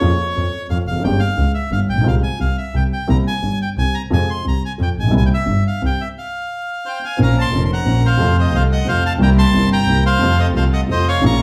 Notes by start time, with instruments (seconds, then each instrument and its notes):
Already playing: bandoneon C#5
0.00 upright piano F2 C#3 F3 A#3 F4, double bass F2
0.36 double bass F2, upright piano F2 F3
0.70 double bass F2, upright piano F2 F3, bandoneon F5
0.87 double bass F1, upright piano E2, bandoneon F5
0.95 upright piano F2
1.00 upright piano F#2
1.04 double bass G1, upright piano G1 G2 C#3 G3 A#3 G4, bandoneon G5
1.19 bandoneon F5
1.37 upright piano C#2 C#3, double bass C#2
1.54 bandoneon E5
1.72 double bass G1, upright piano G1 G2, bandoneon F5
1.89 upright piano A1, double bass A#1, bandoneon G5
1.97 upright piano A#1 B1
2.04 upright piano C2 C3 F3 G#3 F4, double bass C2, bandoneon F5
2.23 bandoneon G#5
2.39 upright piano C2 C3, double bass C2, bandoneon F5
2.58 bandoneon E5
2.74 upright piano C2 C3, double bass C2, bandoneon G5
2.93 bandoneon G5
3.08 upright piano C2 C3 G3 A#3 E4, double bass C2, bandoneon A#5
3.27 bandoneon G#5
3.43 upright piano G1 G2, double bass G1
3.62 bandoneon G5
3.78 double bass C2, upright piano C2 C3, bandoneon G#5
3.95 bandoneon A#5
4.10 upright piano F2 C3 F3 G#3 F4, double bass F2, bandoneon G#5
4.30 bandoneon C6
4.44 upright piano C2 C3, double bass C2, bandoneon A#5
4.65 bandoneon G#5
4.78 upright piano F2 F3, double bass F2
4.82 bandoneon G5
4.98 upright piano A1, double bass A#1, bandoneon G#5
5.04 upright piano A#1 B1
5.11 upright piano C2 C3 G3 A#3 E4, double bass C2
5.17 bandoneon G#5
5.26 bandoneon G5
5.34 bandoneon E5
5.46 upright piano G1 G2, double bass G1
5.67 bandoneon F5
5.81 upright piano C2 C3, double bass C2
5.86 bandoneon G5
6.01 bandoneon E5
6.18 bandoneon F5
6.86 bandoneon C5 G5
7.04 bandoneon F5 G#5
7.17 upright piano A#1 A#2 F3 A#3 C4 C#4, double bass A#1, string section C#4 A#4
7.22 bandoneon F5 A#5
7.39 bandoneon A5 C6
7.51 upright piano F1 F2 F3 A#3 C4 C#4, double bass F1, string section C#4 A#4
7.65 bandoneon C6
7.73 bandoneon F#5 A#5
7.84 upright piano A#1 A#2 F3 A#3 C4 C#4, double bass A#1, string section C#4 A#4
8.05 bandoneon C5 F5
8.17 upright piano F2 C3 F3 A3 F4, double bass F2, string section C4 F4 A4
8.39 bandoneon C5 D#5
8.51 upright piano C2 C3 F3 A3, double bass C2, string section C4 F4 A4, bandoneon C5
8.55 upright piano F4, bandoneon F5
8.72 bandoneon D#5 F#5
8.85 upright piano F2 C3 F3 A3, double bass F2, string section C4 F4 A4, bandoneon C5
8.89 upright piano F4, bandoneon F5
9.05 bandoneon F5 A5
9.18 upright piano C2 C3 G3 A#3 E4, double bass C2, string section C4 E4 A#4
9.22 bandoneon G5 A#5
9.38 bandoneon A5 C6
9.52 double bass G1, upright piano G1 G2 C3 G3 A#3, string section C4 E4 A#4
9.56 upright piano E4
9.73 bandoneon G5 A#5
9.86 double bass C2, upright piano C2 C3 G3 A#3 E4, string section C4 E4 A#4
10.06 bandoneon C5 F5
10.19 upright piano F2 C3 F3 A3, double bass F2, string section C4 F4 A4
10.23 upright piano F4
10.40 bandoneon C5 D#5
10.53 upright piano C2 C3 F3 A3 F4, double bass C2, string section C4 F4, bandoneon C5 F5
10.57 string section A4
10.73 bandoneon D#5 F#5
10.87 upright piano F2 C3 F3 A3 F4, double bass F2, string section C4 F4 A4
10.91 bandoneon C5 D#5
11.08 bandoneon C#5 F5
11.21 double bass A#1, upright piano A#1 A#2 C#3 F3 A#3, string section C#4 F4 A#4
11.26 upright piano F4, bandoneon A#5 C#6